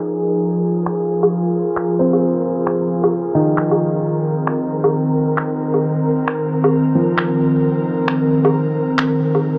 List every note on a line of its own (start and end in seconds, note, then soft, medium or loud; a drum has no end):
0.00 3.98 F3 medium
0.00 0.38 D#4 medium
0.00 3.98 G#4 medium
0.00 9.58 A#4 medium
0.42 3.99 F4 medium
0.86 finger snap loud
1.23 low woodblock medium
1.76 finger snap medium
1.99 3.69 C4 medium
2.13 low woodblock soft
2.67 finger snap loud
3.04 low woodblock medium
3.35 4.21 D#3 medium
3.57 finger snap medium
3.71 low woodblock medium
4.02 9.58 D#3 medium
4.02 9.58 C4 medium
4.02 9.58 A#4 medium
4.47 finger snap loud
4.84 low woodblock medium
5.37 finger snap medium
5.74 low woodblock soft
6.28 finger snap medium
6.64 low woodblock medium
6.95 8.65 F3 soft
7.18 finger snap medium
8.08 finger snap medium
8.45 low woodblock medium
8.98 finger snap medium
9.35 low woodblock soft